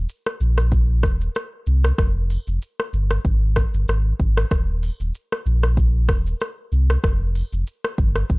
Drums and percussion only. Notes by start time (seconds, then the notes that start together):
0.09 shaker
0.27 cross-stick
0.41 shaker
0.58 cross-stick, shaker
0.72 kick, shaker
1.03 kick, cross-stick, shaker
1.21 shaker
1.35 cross-stick, shaker
1.67 shaker
1.85 cross-stick, shaker
1.98 kick, cross-stick, shaker
2.30 open hi-hat, shaker
2.47 shaker
2.62 shaker
2.80 cross-stick
2.93 shaker
3.11 cross-stick, shaker
3.25 kick, shaker
3.56 kick, cross-stick, shaker
3.74 shaker
3.88 cross-stick, shaker
4.20 kick, shaker
4.37 cross-stick, shaker
4.51 kick, cross-stick, shaker
4.83 open hi-hat, shaker
5.00 shaker
5.15 shaker
5.32 cross-stick
5.46 shaker
5.63 cross-stick, shaker
5.77 kick, shaker
6.09 kick, cross-stick, shaker
6.27 shaker
6.41 cross-stick, shaker
6.72 shaker
6.90 cross-stick, shaker
7.04 kick, cross-stick, shaker
7.35 open hi-hat, shaker
7.52 shaker
7.67 shaker
7.85 cross-stick
7.98 kick, shaker
8.16 cross-stick, shaker
8.30 kick, shaker